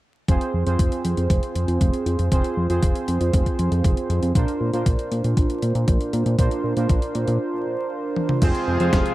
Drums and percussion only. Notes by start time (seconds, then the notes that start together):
0.28 kick, closed hi-hat
0.41 closed hi-hat
0.67 closed hi-hat
0.79 kick, closed hi-hat
0.92 closed hi-hat
1.05 closed hi-hat
1.17 closed hi-hat
1.30 kick, closed hi-hat
1.43 closed hi-hat
1.55 closed hi-hat
1.68 closed hi-hat
1.81 kick, closed hi-hat
1.93 closed hi-hat
2.06 closed hi-hat
2.19 closed hi-hat
2.32 kick, closed hi-hat
2.44 closed hi-hat
2.70 closed hi-hat
2.83 kick, closed hi-hat
2.95 closed hi-hat
3.08 closed hi-hat
3.21 closed hi-hat
3.33 kick, closed hi-hat
3.46 kick, closed hi-hat
3.59 closed hi-hat
3.72 closed hi-hat
3.84 kick, closed hi-hat
3.97 closed hi-hat
4.10 closed hi-hat
4.23 closed hi-hat
4.35 kick, closed hi-hat
4.48 closed hi-hat
4.73 closed hi-hat
4.86 kick, closed hi-hat
4.99 closed hi-hat
5.12 closed hi-hat
5.24 closed hi-hat
5.37 kick, closed hi-hat
5.50 closed hi-hat
5.62 closed hi-hat
5.75 closed hi-hat
5.88 kick, closed hi-hat
6.01 closed hi-hat
6.13 closed hi-hat
6.26 closed hi-hat
6.39 kick, closed hi-hat
6.51 closed hi-hat
6.77 closed hi-hat
6.89 kick, closed hi-hat
7.02 closed hi-hat
7.15 closed hi-hat
7.28 closed hi-hat
8.16 high tom
8.29 mid tom
8.42 kick, closed hi-hat, crash
8.55 closed hi-hat
8.80 closed hi-hat
8.93 kick, snare, closed hi-hat
9.06 closed hi-hat